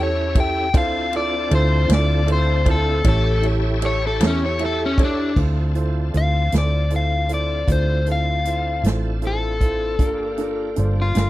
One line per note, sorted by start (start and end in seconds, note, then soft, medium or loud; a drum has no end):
0.00 0.74 E2 loud
0.00 0.69 C#4 medium
0.00 0.27 E4 medium
0.00 0.70 E4 medium
0.00 0.27 G4 medium
0.00 0.70 G4 medium
0.00 0.27 A4 medium
0.00 0.70 A4 medium
0.00 0.27 C#5 medium
0.00 0.38 C#5 medium
0.35 0.65 E4 medium
0.35 0.65 G4 medium
0.35 0.65 A4 medium
0.35 0.66 E5 medium
0.35 kick medium
0.35 ride medium
0.40 0.75 G5 medium
0.73 1.47 D2 loud
0.73 3.02 C4 medium
0.73 3.02 D4 medium
0.73 1.03 E4 medium
0.73 3.03 F4 medium
0.73 1.03 F4 medium
0.73 3.03 A4 medium
0.73 1.03 A4 medium
0.73 1.03 C5 medium
0.73 kick loud
0.73 ride medium
0.78 1.13 F5 loud
1.13 1.42 E4 medium
1.13 1.42 F4 medium
1.13 1.43 A4 medium
1.13 1.43 D5 medium
1.13 1.52 D5 medium
1.13 ride medium
1.50 1.87 D2 medium
1.50 1.80 E4 medium
1.50 1.80 F4 medium
1.50 1.80 A4 medium
1.50 1.80 C5 medium
1.50 ride medium
1.55 1.91 C5 medium
1.88 3.01 D2 loud
1.88 2.18 E4 medium
1.88 2.18 F4 medium
1.88 2.18 A4 medium
1.88 2.18 D5 medium
1.88 snare loud
1.88 ride medium
1.94 2.29 D5 medium
2.26 2.56 E4 medium
2.26 2.56 F4 medium
2.26 2.56 A4 medium
2.26 2.57 C5 medium
2.26 ride medium
2.32 2.68 C5 medium
2.64 2.94 E4 medium
2.64 2.95 F4 medium
2.64 2.95 A4 medium
2.64 2.95 C5 medium
2.64 kick medium
2.64 ride medium
2.71 3.06 A4 medium
3.04 4.21 A1 loud
3.04 3.33 E4 medium
3.04 5.34 E4 medium
3.04 3.33 G4 medium
3.04 5.34 G4 medium
3.04 3.34 A4 medium
3.04 5.34 A4 medium
3.04 3.34 C#5 medium
3.04 5.34 C#5 medium
3.04 kick medium
3.04 ride medium
3.09 3.44 A4 loud
3.42 3.72 E4 medium
3.42 3.72 G4 medium
3.42 3.72 A4 medium
3.42 3.72 C#5 medium
3.42 ride medium
3.81 4.11 E4 medium
3.81 4.11 G4 medium
3.81 4.11 A4 medium
3.81 4.11 C#5 medium
3.81 ride medium
3.86 4.03 C#5 loud
4.07 4.23 A4 medium
4.20 5.32 E2 loud
4.20 4.50 E4 medium
4.20 4.50 G4 medium
4.20 4.50 A4 medium
4.20 4.51 C#5 medium
4.20 snare loud
4.20 ride medium
4.27 4.42 C#4 loud
4.46 4.62 C#5 loud
4.59 4.88 E4 medium
4.59 4.88 G4 medium
4.59 4.89 A4 medium
4.59 4.88 E5 medium
4.59 ride medium
4.65 4.81 A4 loud
4.86 5.01 C#4 medium
4.98 5.27 E4 medium
4.98 5.27 G4 medium
4.98 5.27 A4 medium
4.98 5.27 C#5 medium
4.98 kick medium
4.98 ride medium
5.04 5.38 D4 loud
5.36 6.09 D2 medium
5.36 5.65 E4 soft
5.36 5.65 F4 soft
5.36 9.97 F4 medium
5.36 5.66 A4 soft
5.36 9.97 A4 soft
5.36 5.66 C5 soft
5.36 kick medium
5.36 crash medium
5.40 9.97 C4 medium
5.40 9.98 D4 soft
5.74 6.03 E4 soft
5.74 6.04 F4 soft
5.74 6.04 A4 soft
5.74 6.04 C5 medium
5.74 closed hi-hat soft
6.13 6.49 D2 medium
6.13 6.42 E4 soft
6.13 6.42 F4 soft
6.13 6.42 A4 soft
6.13 6.43 C5 soft
6.13 closed hi-hat soft
6.17 6.53 F5 medium
6.52 7.64 D2 medium
6.52 6.81 E4 soft
6.52 6.81 F4 soft
6.52 6.81 A4 soft
6.52 6.81 C5 soft
6.52 snare medium
6.52 closed hi-hat medium
6.58 6.92 D5 medium
6.90 7.19 E4 soft
6.90 7.19 F4 soft
6.90 7.20 A4 soft
6.90 7.20 C5 soft
6.90 closed hi-hat soft
6.96 7.31 F5 medium
7.28 7.57 E4 soft
7.28 7.57 F4 soft
7.28 7.58 A4 soft
7.28 7.58 C5 soft
7.28 closed hi-hat medium
7.34 7.69 D5 medium
7.68 8.85 D2 medium
7.68 7.97 E4 soft
7.68 7.97 F4 soft
7.68 7.97 A4 soft
7.68 7.97 D5 soft
7.68 kick medium
7.68 closed hi-hat medium
7.72 8.07 C5 medium
8.06 8.35 E4 soft
8.06 8.35 F4 soft
8.06 8.36 A4 soft
8.06 8.36 C5 soft
8.06 closed hi-hat medium
8.12 8.84 F5 medium
8.45 8.74 E4 soft
8.45 8.74 F4 soft
8.45 8.74 A4 soft
8.45 8.75 C5 soft
8.45 closed hi-hat soft
8.83 9.99 A1 medium
8.83 9.12 E4 soft
8.83 9.13 F4 soft
8.83 9.13 A4 soft
8.83 9.13 C5 soft
8.83 snare medium
8.83 closed hi-hat medium
9.22 9.51 E4 soft
9.22 9.51 F4 soft
9.22 9.51 A4 soft
9.22 9.51 C5 soft
9.22 closed hi-hat soft
9.27 10.94 A4 medium
9.61 9.90 E4 soft
9.61 9.90 F4 soft
9.61 9.90 A4 soft
9.61 9.90 C5 soft
9.61 kick medium
9.61 closed hi-hat soft
9.99 10.73 G1 medium
9.99 11.30 A#3 soft
9.99 10.28 D4 soft
9.99 11.30 D4 medium
9.99 10.29 F4 soft
9.99 11.30 F4 medium
9.99 11.30 G4 medium
9.99 10.29 A4 soft
9.99 10.29 A#4 medium
9.99 kick medium
9.99 closed hi-hat medium
10.38 10.67 D4 medium
10.38 10.67 F4 soft
10.38 10.67 A4 soft
10.38 10.67 A#4 medium
10.38 closed hi-hat soft
10.76 11.13 G1 medium
10.76 11.05 D4 soft
10.76 11.06 F4 soft
10.76 11.06 A4 soft
10.76 11.06 C5 medium
10.76 closed hi-hat soft
11.02 11.30 F4 medium
11.15 11.30 G1 medium
11.15 11.30 D4 soft
11.15 11.30 F4 soft
11.15 11.30 A4 soft
11.15 11.30 A#4 soft
11.15 snare medium
11.15 closed hi-hat medium